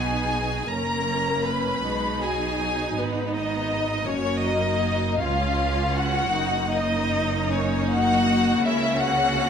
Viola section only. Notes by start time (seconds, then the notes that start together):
Already playing: B3 D#4
0.70 A#3 C#4
1.84 G#3 D#4
2.22 F#3
2.59 F#3
2.97 B3
4.07 A#3 F#4
5.19 C#4 F4
6.32 A#3 D#4
8.64 C#4